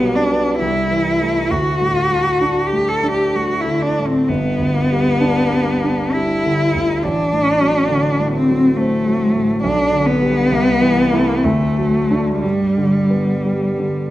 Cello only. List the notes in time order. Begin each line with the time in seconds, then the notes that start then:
Already playing: B3
0.15 D4
0.59 E4
1.51 F#4
2.66 G4
2.88 A4
3.12 G4
3.36 F#4
3.61 E4
3.82 D4
4.06 C4
4.29 B3
6.13 E4
7.03 D4
8.32 C4
8.77 A3
9.63 D4
10.06 B3
11.44 A3
12.41 G3